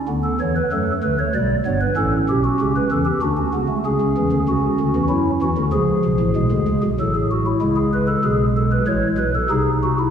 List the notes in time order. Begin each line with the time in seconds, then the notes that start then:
0.08 D2 D3 B3
0.24 A4
0.40 E2 E3 C#5
0.56 B4
0.72 F#2 F#3 A3 A4
1.03 D2 D3 B4
1.19 C#5
1.34 B1 B2 G3 D5
1.66 G1 G2 B3 C#5
1.81 B4
1.97 A1 A2 C#4 A4
2.29 B1 B2 G4
2.44 F#4
2.60 C#2 C#3 G4
2.76 B4
2.91 E2 E3 A4
3.05 G4
3.22 D2 D3 D4 F#4
3.37 C#4
3.53 C#2 C#3 B3
3.69 A3
3.85 C#2 C#3 C#4 G#4
4.01 C#2 C#3
4.17 E2 E3
4.32 D2 D3
4.48 C#2 C#3 F#4
4.80 D2 D3
4.96 E2 E3
5.09 F#2 F#3 E4
5.42 E2 E3 F#4
5.57 D2 D3
5.72 C#2 C#3 F3 G#4
6.05 B1 B2
6.20 A1 A2
6.36 B1 B2 G#3
6.51 D2 D3
6.67 C#2 C#3
6.83 B1 B2
7.00 A1 A2 F#3 A4
7.15 G#4
7.31 F#4
7.46 E4
7.61 C#2 C#3 G#3 E4
7.76 G#4
7.93 B4
8.08 A4
8.24 B1 B2 G#4
8.57 A4
8.72 B4
8.87 A1 A2 C#5
9.18 B1 B2 B4
9.35 A4
9.50 C2 C3 D#4 G#4
9.83 F#4
9.99 E4